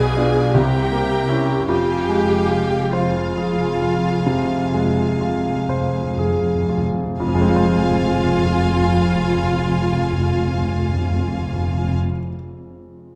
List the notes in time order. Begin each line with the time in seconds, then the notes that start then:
Already playing: B1 B2 B3 G#4 D5 F5 G#5
0.17 D4 F4
0.53 C2 C3 G4 E5 G5 A#5
0.92 A#3
1.29 C#4 E4
1.68 F1 F2 G4 F5 G5 G#5
1.80 F2
1.89 F2
2.01 F2
2.09 F2 G#3
2.20 F2
2.30 F2
2.39 F2
2.51 F4
2.70 F2
2.89 F2 F4 C5
2.94 F5 G#5
3.01 F2
3.23 F2
3.34 F2 G#4
3.55 F2
3.65 F2
3.77 F2
3.82 F4
3.88 F2
3.97 F2
4.08 F2
4.19 F2
4.26 F2 C3
4.41 F2
4.52 F2
4.64 F2
4.74 F2 G#3
4.87 F2
4.99 F2
5.11 F2
5.21 F2 F4
5.32 F2
5.45 F2
5.55 F2
5.68 F2 C5
5.80 F2
5.93 F2
6.05 F2
6.17 F2 G#4
6.28 F2
6.43 F2
6.55 F2
6.66 F2 F4
6.78 F2
6.92 F2
7.03 F2
7.19 F1 F2 F4 F5 G#5
7.28 F2 F3
7.35 F2 G#3
7.41 F2 C4
7.49 F2 F4
7.56 F2 C5
7.63 F2
7.70 F2
7.77 F2
7.84 F2
7.91 F2
7.98 F2
8.05 F2
8.11 F2
8.18 F2
8.25 F2
8.32 F2
8.39 F2
8.45 F2
8.52 F2
8.59 F2
8.66 F2
8.73 F2
8.80 F2
8.88 F2
8.95 F2
9.01 F2
9.09 F2
9.16 F2
9.23 F2
9.30 F2
9.36 F2
9.43 F2
9.51 F2
9.58 F2
9.65 F2
9.71 F2
9.77 F2
9.85 F2
9.92 F2
9.99 F2
10.06 F2
10.12 F2
10.19 F2
10.27 F2
10.33 F2
10.40 F2
10.47 F2
10.55 F2
10.62 F2
10.69 F2
10.75 F2
10.82 F2
10.89 F2
10.96 F2
11.03 F2
11.10 F2
11.17 F2
11.24 F2
11.31 F2
11.39 F2
11.46 F2
11.53 F2
11.59 F2
11.66 F2
11.73 F2
11.80 F2
11.87 F2
11.94 F2